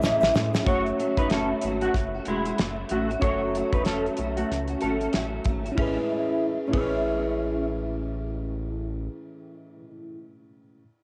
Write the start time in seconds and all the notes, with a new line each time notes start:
Already playing: C#3 G#3 C#4 E4 G#4 B4 C#5
0.01 A1 A2 E3 G#3 C#4 E4, snare, shaker
0.20 A1, snare, shaker
0.33 A2 E3 G#3 C#4 E4, snare, shaker
0.53 G#3 C#4 E4, snare, shaker
0.63 F#1 F#3 A3 C#4 F#4 C#5, kick, closed hi-hat
0.68 C#4 F#4 C#5
0.86 closed hi-hat
0.98 F#3 A3 C#4 F#4, closed hi-hat
1.17 F#1 D#4 B4, kick, closed hi-hat
1.30 F#3 A3 C#4 F#4 A4, snare, closed hi-hat
1.61 G#1 F#3 A3 C#4, closed hi-hat
1.66 F#4
1.81 A3 F#4, closed hi-hat
1.94 F#1, kick, snare, closed hi-hat
2.14 A3 C#4 F#4
2.25 E1 F#3 G#3 A3 C#4 E4, closed hi-hat
2.30 F#4
2.45 C#4 F#4, closed hi-hat
2.49 A3
2.58 F#1 F#3 A3 C#4 F#4, snare, closed hi-hat
2.89 A1 F#3 A3 C#4 F#4, closed hi-hat
2.93 F#4
3.09 A3 C#4 F#4, closed hi-hat
3.20 F#1 F#3 A3 C#4 F#4 A4 C#5, kick, closed hi-hat
3.24 C#5
3.54 F#3 A3 C#4 F#4, closed hi-hat
3.73 E1 D#4 B4, kick, closed hi-hat
3.85 F#3 A3 C#4 F#4 A4, snare, closed hi-hat
4.06 closed hi-hat
4.16 B1 F#3 A3 C#4 F#4, closed hi-hat
4.37 A3 F#4, closed hi-hat
4.51 C#2, snare, closed hi-hat
4.68 C#4 F#4, closed hi-hat
4.72 A3
4.81 G#1 F#3 A3 C#4 A4, closed hi-hat
4.85 F#4
5.00 A3 C#4 F#4, closed hi-hat
5.13 A1 F#3 A3 C#4 F#4, snare, closed hi-hat
5.44 G#1 F#3 A3 C#4 F#4, kick, closed hi-hat
5.64 A3 C#4 F#4, closed hi-hat
5.72 A2 C#4 E4
5.77 A1 E3 C#4 G#4, kick, ride
5.82 G#3 B4
5.88 C#4
5.92 E4
6.67 A2 C#4 E4
6.73 A1 E3 C#4 G#4, kick, ride
6.78 G#3 B4
6.83 C#4
6.87 E4